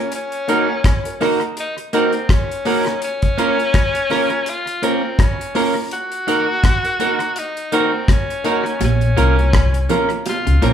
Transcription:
Already playing: C#4
0.12 C#4, closed hi-hat
0.32 closed hi-hat
0.48 A#3 D#4 F#4 A#4, closed hi-hat
0.84 kick, cross-stick, closed hi-hat
1.05 F#4 A#4, closed hi-hat
1.21 A#3 D#4 F#4 A#4, cross-stick, open hi-hat
1.41 closed hi-hat
1.57 D#4, closed hi-hat
1.78 closed hi-hat
1.93 A#3 C4 D#4 F#4 A#4, closed hi-hat
2.13 closed hi-hat
2.29 C#4, kick, cross-stick, closed hi-hat
2.51 closed hi-hat
2.65 A#3 D#4 F#4 A#4, open hi-hat
2.87 cross-stick, closed hi-hat
3.02 C#4, closed hi-hat
3.22 kick, closed hi-hat
3.38 A#3 C#4 F4 A#4, closed hi-hat
3.59 closed hi-hat
3.74 kick, cross-stick, closed hi-hat
3.95 closed hi-hat
4.10 A#3 C#4 F4 A#4, cross-stick, open hi-hat
4.30 closed hi-hat
4.46 F4, closed hi-hat
4.67 closed hi-hat
4.82 A#3 C4 C#4 F4 A#4, closed hi-hat
5.19 C#4, kick, cross-stick, closed hi-hat
5.41 closed hi-hat
5.55 A#3 C#4 F4 A#4, open hi-hat
5.76 muted clean electric guitar stroke
5.91 F#4, closed hi-hat
6.12 closed hi-hat
6.27 A#3 D#4 F#4 A#4, closed hi-hat
6.64 kick, cross-stick, closed hi-hat
6.85 F#4 A#4, closed hi-hat
6.99 A#3 D#4 F#4 A#4, closed hi-hat
7.20 closed hi-hat
7.36 D#4, closed hi-hat
7.57 closed hi-hat
7.72 A#3 C4 D#4 F#4 A#4, closed hi-hat
8.08 C#4, kick, cross-stick, closed hi-hat
8.30 closed hi-hat
8.44 A#3 D#4 F#4 A#4, closed hi-hat
8.66 closed hi-hat
8.81 A#1 A#2 C#4, closed hi-hat, high bongo
9.01 closed hi-hat
9.17 C2 C3 A#3 C#4 F4 A#4, closed hi-hat
9.39 closed hi-hat
9.53 kick, cross-stick, closed hi-hat
9.74 closed hi-hat
9.89 A#3 C#4 F4 A#4, closed hi-hat, low bongo
10.10 closed hi-hat
10.26 F4, closed hi-hat, high bongo
10.47 C#2 C#3, closed hi-hat
10.62 A#1 A#2 A#3 C4 C#4 F4 A#4, closed hi-hat

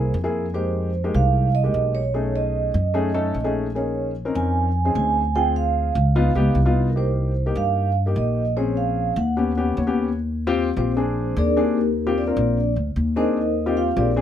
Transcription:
Already playing: A#3 E4 G#4 C5
0.14 F2
0.24 A#3 E4 G#4
0.54 G#3 A#3 D#4 G4 C5
1.04 G#3 A#3 D#4 G4
1.14 C2 F5
1.55 D#5
1.63 G#3 A#3 D#4 G4
1.74 B1
1.95 C#5
2.14 A3 C#4 D#4 G#4
2.36 D#5
2.74 F#2
2.94 A3 C#4 D#4 G#4
3.14 A3 C#4 D#4 A4
3.34 A#1
3.44 A3 C#4 D#4 G#4
3.75 A#3 C#4 D#4 G#4 C#5
4.25 C4 C#4 D#4 A#4
4.35 F2 G#5
4.85 C4 C#4 D#4 G#4
4.95 D2 G#5
5.35 C4 F4 G#4 G5
5.56 F5
5.95 C#2
6.16 B3 D#4 F4
6.35 C#2 B3 D#4 G4
6.55 C2
6.65 B3 D#4 F4
6.90 A#4
6.96 A#3 D#4 G4 C5
7.46 A#3 D#4 G4
7.56 G2 F5
8.06 A#3 D#4 G4
8.16 A#1 D#5
8.57 C4 C#4 G#4 C#5
8.77 F5
9.16 D#2 F#5
9.37 B3 C#4 G4
9.57 B3 C#4 G4
9.77 D#2 C#5
9.87 B3 C#4 G4
10.47 C4 F4 G4
10.77 A#1 C4 F4 G4 C5
10.97 C4 D4 G#4
11.36 D#2 D4 G#4 A#4 D5
11.57 A#3 C4 D4 D#4 G4 G#4 A#4
12.07 C4 F4 G4
12.18 D4 D5
12.27 C4 F4 A#4
12.37 A#1
12.76 D2
12.96 D#2
13.16 C4 D4 D#4 G#4 A#4 C5 D#5
13.66 C4 F4 G4
13.77 F4 F5
13.96 A#1 C4 D4 F4 G4 G#4 A#4 D5
14.16 C4 D4 G#4

